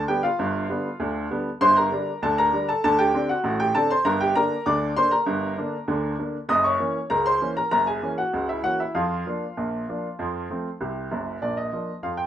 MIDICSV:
0, 0, Header, 1, 2, 480
1, 0, Start_track
1, 0, Key_signature, -2, "major"
1, 0, Tempo, 609756
1, 313, Time_signature, 2, 2, 24, 8
1, 6074, Tempo, 616650
1, 9616, End_track
2, 0, Start_track
2, 0, Title_t, "Upright piano"
2, 0, Program_c, 0, 0
2, 65, Note_on_c, 0, 79, 89
2, 66, Note_on_c, 0, 50, 52
2, 67, Note_on_c, 0, 55, 56
2, 71, Note_on_c, 0, 59, 61
2, 72, Note_on_c, 0, 67, 62
2, 182, Note_on_c, 0, 77, 86
2, 184, Note_off_c, 0, 67, 0
2, 189, Note_off_c, 0, 79, 0
2, 191, Note_on_c, 0, 65, 70
2, 200, Note_off_c, 0, 50, 0
2, 201, Note_off_c, 0, 55, 0
2, 203, Note_off_c, 0, 59, 0
2, 307, Note_on_c, 0, 31, 79
2, 311, Note_on_c, 0, 43, 84
2, 513, Note_off_c, 0, 31, 0
2, 515, Note_off_c, 0, 43, 0
2, 547, Note_on_c, 0, 50, 54
2, 548, Note_on_c, 0, 55, 54
2, 553, Note_on_c, 0, 59, 63
2, 681, Note_off_c, 0, 50, 0
2, 681, Note_off_c, 0, 55, 0
2, 685, Note_off_c, 0, 59, 0
2, 785, Note_on_c, 0, 38, 74
2, 786, Note_on_c, 0, 50, 72
2, 858, Note_off_c, 0, 77, 0
2, 992, Note_off_c, 0, 38, 0
2, 993, Note_off_c, 0, 50, 0
2, 1000, Note_off_c, 0, 65, 0
2, 1029, Note_on_c, 0, 50, 54
2, 1033, Note_on_c, 0, 55, 51
2, 1033, Note_on_c, 0, 59, 67
2, 1162, Note_off_c, 0, 50, 0
2, 1165, Note_off_c, 0, 55, 0
2, 1165, Note_off_c, 0, 59, 0
2, 1267, Note_on_c, 0, 43, 85
2, 1267, Note_on_c, 0, 84, 121
2, 1268, Note_on_c, 0, 31, 79
2, 1276, Note_on_c, 0, 72, 90
2, 1386, Note_off_c, 0, 72, 0
2, 1390, Note_off_c, 0, 84, 0
2, 1391, Note_on_c, 0, 82, 90
2, 1400, Note_on_c, 0, 70, 66
2, 1473, Note_off_c, 0, 43, 0
2, 1474, Note_off_c, 0, 31, 0
2, 1511, Note_on_c, 0, 50, 55
2, 1513, Note_on_c, 0, 55, 56
2, 1516, Note_on_c, 0, 62, 63
2, 1643, Note_off_c, 0, 50, 0
2, 1644, Note_off_c, 0, 55, 0
2, 1647, Note_off_c, 0, 62, 0
2, 1731, Note_off_c, 0, 70, 0
2, 1733, Note_off_c, 0, 82, 0
2, 1751, Note_on_c, 0, 38, 79
2, 1753, Note_on_c, 0, 50, 80
2, 1754, Note_on_c, 0, 81, 94
2, 1760, Note_on_c, 0, 69, 68
2, 1868, Note_off_c, 0, 69, 0
2, 1873, Note_off_c, 0, 81, 0
2, 1876, Note_on_c, 0, 82, 106
2, 1886, Note_on_c, 0, 70, 73
2, 1955, Note_off_c, 0, 38, 0
2, 1956, Note_off_c, 0, 50, 0
2, 1989, Note_on_c, 0, 50, 57
2, 1992, Note_on_c, 0, 55, 55
2, 1996, Note_on_c, 0, 62, 63
2, 2102, Note_off_c, 0, 70, 0
2, 2102, Note_off_c, 0, 82, 0
2, 2114, Note_on_c, 0, 81, 89
2, 2122, Note_off_c, 0, 50, 0
2, 2124, Note_off_c, 0, 55, 0
2, 2124, Note_on_c, 0, 69, 72
2, 2127, Note_off_c, 0, 62, 0
2, 2224, Note_off_c, 0, 81, 0
2, 2230, Note_off_c, 0, 69, 0
2, 2236, Note_on_c, 0, 81, 105
2, 2237, Note_on_c, 0, 38, 75
2, 2237, Note_on_c, 0, 50, 91
2, 2246, Note_on_c, 0, 69, 85
2, 2351, Note_off_c, 0, 69, 0
2, 2351, Note_on_c, 0, 79, 104
2, 2354, Note_off_c, 0, 81, 0
2, 2359, Note_on_c, 0, 67, 80
2, 2438, Note_off_c, 0, 38, 0
2, 2438, Note_off_c, 0, 50, 0
2, 2473, Note_on_c, 0, 50, 61
2, 2475, Note_on_c, 0, 60, 61
2, 2479, Note_on_c, 0, 62, 64
2, 2578, Note_off_c, 0, 67, 0
2, 2579, Note_off_c, 0, 79, 0
2, 2592, Note_on_c, 0, 78, 82
2, 2601, Note_on_c, 0, 66, 67
2, 2604, Note_off_c, 0, 50, 0
2, 2606, Note_off_c, 0, 60, 0
2, 2609, Note_off_c, 0, 62, 0
2, 2706, Note_on_c, 0, 45, 78
2, 2708, Note_on_c, 0, 33, 84
2, 2783, Note_off_c, 0, 78, 0
2, 2819, Note_off_c, 0, 66, 0
2, 2832, Note_on_c, 0, 79, 96
2, 2841, Note_on_c, 0, 67, 66
2, 2912, Note_off_c, 0, 45, 0
2, 2913, Note_off_c, 0, 33, 0
2, 2948, Note_off_c, 0, 67, 0
2, 2949, Note_on_c, 0, 81, 100
2, 2951, Note_off_c, 0, 79, 0
2, 2953, Note_on_c, 0, 50, 55
2, 2954, Note_on_c, 0, 60, 54
2, 2957, Note_on_c, 0, 62, 59
2, 2959, Note_on_c, 0, 69, 76
2, 3067, Note_off_c, 0, 69, 0
2, 3070, Note_off_c, 0, 81, 0
2, 3074, Note_on_c, 0, 84, 92
2, 3081, Note_on_c, 0, 72, 69
2, 3084, Note_off_c, 0, 50, 0
2, 3085, Note_off_c, 0, 60, 0
2, 3087, Note_off_c, 0, 62, 0
2, 3187, Note_on_c, 0, 82, 106
2, 3188, Note_off_c, 0, 72, 0
2, 3188, Note_on_c, 0, 43, 90
2, 3190, Note_on_c, 0, 31, 79
2, 3192, Note_off_c, 0, 84, 0
2, 3200, Note_on_c, 0, 70, 83
2, 3307, Note_off_c, 0, 70, 0
2, 3309, Note_off_c, 0, 82, 0
2, 3310, Note_on_c, 0, 79, 96
2, 3319, Note_on_c, 0, 67, 72
2, 3393, Note_off_c, 0, 43, 0
2, 3394, Note_off_c, 0, 31, 0
2, 3427, Note_off_c, 0, 67, 0
2, 3428, Note_on_c, 0, 82, 113
2, 3430, Note_on_c, 0, 50, 62
2, 3431, Note_off_c, 0, 79, 0
2, 3433, Note_on_c, 0, 58, 57
2, 3437, Note_on_c, 0, 62, 69
2, 3440, Note_on_c, 0, 70, 83
2, 3562, Note_off_c, 0, 50, 0
2, 3564, Note_off_c, 0, 58, 0
2, 3567, Note_off_c, 0, 62, 0
2, 3657, Note_off_c, 0, 82, 0
2, 3659, Note_off_c, 0, 70, 0
2, 3668, Note_on_c, 0, 86, 92
2, 3669, Note_on_c, 0, 38, 71
2, 3672, Note_on_c, 0, 50, 82
2, 3675, Note_on_c, 0, 74, 80
2, 3874, Note_off_c, 0, 38, 0
2, 3875, Note_off_c, 0, 50, 0
2, 3897, Note_off_c, 0, 74, 0
2, 3897, Note_off_c, 0, 86, 0
2, 3909, Note_on_c, 0, 50, 55
2, 3909, Note_on_c, 0, 84, 111
2, 3913, Note_on_c, 0, 58, 55
2, 3919, Note_on_c, 0, 62, 59
2, 3920, Note_on_c, 0, 72, 77
2, 4025, Note_on_c, 0, 82, 90
2, 4028, Note_off_c, 0, 72, 0
2, 4030, Note_off_c, 0, 84, 0
2, 4033, Note_on_c, 0, 70, 68
2, 4042, Note_off_c, 0, 50, 0
2, 4044, Note_off_c, 0, 58, 0
2, 4049, Note_off_c, 0, 62, 0
2, 4144, Note_on_c, 0, 43, 87
2, 4145, Note_on_c, 0, 31, 73
2, 4351, Note_off_c, 0, 43, 0
2, 4352, Note_off_c, 0, 31, 0
2, 4391, Note_on_c, 0, 50, 63
2, 4394, Note_on_c, 0, 58, 59
2, 4397, Note_on_c, 0, 62, 63
2, 4523, Note_off_c, 0, 50, 0
2, 4525, Note_off_c, 0, 58, 0
2, 4527, Note_off_c, 0, 62, 0
2, 4626, Note_on_c, 0, 38, 75
2, 4629, Note_on_c, 0, 50, 81
2, 4832, Note_off_c, 0, 38, 0
2, 4834, Note_off_c, 0, 50, 0
2, 4837, Note_off_c, 0, 82, 0
2, 4841, Note_off_c, 0, 70, 0
2, 4871, Note_on_c, 0, 50, 49
2, 4874, Note_on_c, 0, 58, 51
2, 4878, Note_on_c, 0, 62, 56
2, 5003, Note_off_c, 0, 50, 0
2, 5005, Note_off_c, 0, 58, 0
2, 5008, Note_off_c, 0, 62, 0
2, 5107, Note_on_c, 0, 42, 88
2, 5109, Note_on_c, 0, 87, 108
2, 5110, Note_on_c, 0, 30, 80
2, 5118, Note_on_c, 0, 75, 93
2, 5227, Note_off_c, 0, 75, 0
2, 5228, Note_on_c, 0, 85, 90
2, 5230, Note_off_c, 0, 87, 0
2, 5236, Note_on_c, 0, 73, 71
2, 5313, Note_off_c, 0, 42, 0
2, 5315, Note_off_c, 0, 30, 0
2, 5351, Note_on_c, 0, 52, 50
2, 5355, Note_on_c, 0, 58, 56
2, 5358, Note_on_c, 0, 61, 61
2, 5483, Note_off_c, 0, 52, 0
2, 5486, Note_off_c, 0, 58, 0
2, 5489, Note_off_c, 0, 61, 0
2, 5518, Note_off_c, 0, 85, 0
2, 5570, Note_off_c, 0, 73, 0
2, 5588, Note_on_c, 0, 82, 99
2, 5590, Note_on_c, 0, 49, 74
2, 5592, Note_on_c, 0, 37, 72
2, 5598, Note_on_c, 0, 70, 74
2, 5707, Note_off_c, 0, 70, 0
2, 5711, Note_off_c, 0, 82, 0
2, 5713, Note_on_c, 0, 84, 96
2, 5721, Note_on_c, 0, 72, 70
2, 5796, Note_off_c, 0, 49, 0
2, 5797, Note_off_c, 0, 37, 0
2, 5837, Note_on_c, 0, 52, 52
2, 5839, Note_on_c, 0, 58, 50
2, 5843, Note_on_c, 0, 61, 55
2, 5905, Note_off_c, 0, 84, 0
2, 5941, Note_off_c, 0, 72, 0
2, 5956, Note_on_c, 0, 82, 90
2, 5968, Note_off_c, 0, 52, 0
2, 5969, Note_off_c, 0, 58, 0
2, 5969, Note_on_c, 0, 70, 67
2, 5973, Note_off_c, 0, 61, 0
2, 6060, Note_off_c, 0, 82, 0
2, 6070, Note_off_c, 0, 70, 0
2, 6072, Note_on_c, 0, 82, 102
2, 6073, Note_on_c, 0, 30, 75
2, 6074, Note_on_c, 0, 42, 77
2, 6082, Note_on_c, 0, 70, 79
2, 6189, Note_off_c, 0, 70, 0
2, 6192, Note_off_c, 0, 82, 0
2, 6194, Note_on_c, 0, 80, 86
2, 6202, Note_on_c, 0, 68, 63
2, 6276, Note_off_c, 0, 30, 0
2, 6276, Note_off_c, 0, 42, 0
2, 6318, Note_on_c, 0, 52, 51
2, 6321, Note_on_c, 0, 58, 49
2, 6325, Note_on_c, 0, 61, 59
2, 6385, Note_off_c, 0, 80, 0
2, 6420, Note_off_c, 0, 68, 0
2, 6434, Note_on_c, 0, 78, 75
2, 6442, Note_on_c, 0, 66, 59
2, 6448, Note_off_c, 0, 52, 0
2, 6450, Note_off_c, 0, 58, 0
2, 6453, Note_off_c, 0, 61, 0
2, 6555, Note_on_c, 0, 49, 73
2, 6556, Note_on_c, 0, 37, 68
2, 6660, Note_off_c, 0, 66, 0
2, 6660, Note_off_c, 0, 78, 0
2, 6677, Note_on_c, 0, 76, 78
2, 6688, Note_on_c, 0, 64, 60
2, 6757, Note_off_c, 0, 49, 0
2, 6758, Note_off_c, 0, 37, 0
2, 6790, Note_on_c, 0, 52, 41
2, 6791, Note_on_c, 0, 78, 92
2, 6792, Note_off_c, 0, 64, 0
2, 6794, Note_off_c, 0, 76, 0
2, 6794, Note_on_c, 0, 58, 46
2, 6798, Note_on_c, 0, 61, 48
2, 6799, Note_on_c, 0, 66, 68
2, 6907, Note_off_c, 0, 66, 0
2, 6911, Note_off_c, 0, 78, 0
2, 6917, Note_on_c, 0, 76, 69
2, 6923, Note_off_c, 0, 52, 0
2, 6926, Note_off_c, 0, 58, 0
2, 6927, Note_on_c, 0, 64, 58
2, 6928, Note_off_c, 0, 61, 0
2, 7031, Note_off_c, 0, 64, 0
2, 7032, Note_on_c, 0, 77, 75
2, 7033, Note_on_c, 0, 41, 79
2, 7034, Note_off_c, 0, 76, 0
2, 7035, Note_on_c, 0, 53, 67
2, 7043, Note_on_c, 0, 65, 57
2, 7237, Note_off_c, 0, 41, 0
2, 7239, Note_off_c, 0, 53, 0
2, 7279, Note_on_c, 0, 53, 51
2, 7282, Note_on_c, 0, 58, 43
2, 7285, Note_on_c, 0, 62, 54
2, 7410, Note_off_c, 0, 53, 0
2, 7412, Note_off_c, 0, 58, 0
2, 7414, Note_off_c, 0, 62, 0
2, 7519, Note_on_c, 0, 34, 63
2, 7519, Note_on_c, 0, 46, 59
2, 7722, Note_off_c, 0, 34, 0
2, 7722, Note_off_c, 0, 46, 0
2, 7765, Note_on_c, 0, 53, 44
2, 7769, Note_on_c, 0, 58, 41
2, 7771, Note_on_c, 0, 62, 57
2, 7895, Note_off_c, 0, 53, 0
2, 7897, Note_off_c, 0, 58, 0
2, 7899, Note_off_c, 0, 62, 0
2, 8000, Note_on_c, 0, 41, 75
2, 8004, Note_on_c, 0, 53, 66
2, 8202, Note_off_c, 0, 41, 0
2, 8205, Note_off_c, 0, 53, 0
2, 8243, Note_on_c, 0, 53, 48
2, 8247, Note_on_c, 0, 57, 48
2, 8250, Note_on_c, 0, 60, 47
2, 8373, Note_off_c, 0, 53, 0
2, 8376, Note_off_c, 0, 57, 0
2, 8378, Note_off_c, 0, 60, 0
2, 8446, Note_off_c, 0, 77, 0
2, 8451, Note_off_c, 0, 65, 0
2, 8479, Note_on_c, 0, 48, 61
2, 8480, Note_on_c, 0, 36, 63
2, 8683, Note_off_c, 0, 36, 0
2, 8683, Note_off_c, 0, 48, 0
2, 8720, Note_on_c, 0, 30, 66
2, 8720, Note_on_c, 0, 42, 70
2, 8911, Note_off_c, 0, 30, 0
2, 8911, Note_off_c, 0, 42, 0
2, 8956, Note_on_c, 0, 74, 73
2, 8960, Note_on_c, 0, 34, 57
2, 8960, Note_on_c, 0, 46, 61
2, 9076, Note_on_c, 0, 75, 70
2, 9077, Note_off_c, 0, 74, 0
2, 9162, Note_off_c, 0, 34, 0
2, 9162, Note_off_c, 0, 46, 0
2, 9197, Note_on_c, 0, 53, 43
2, 9198, Note_on_c, 0, 58, 39
2, 9202, Note_on_c, 0, 62, 41
2, 9328, Note_off_c, 0, 53, 0
2, 9329, Note_off_c, 0, 58, 0
2, 9332, Note_off_c, 0, 62, 0
2, 9363, Note_off_c, 0, 75, 0
2, 9431, Note_on_c, 0, 41, 52
2, 9432, Note_on_c, 0, 53, 53
2, 9433, Note_on_c, 0, 77, 71
2, 9544, Note_on_c, 0, 79, 74
2, 9553, Note_off_c, 0, 77, 0
2, 9616, Note_off_c, 0, 41, 0
2, 9616, Note_off_c, 0, 53, 0
2, 9616, Note_off_c, 0, 79, 0
2, 9616, End_track
0, 0, End_of_file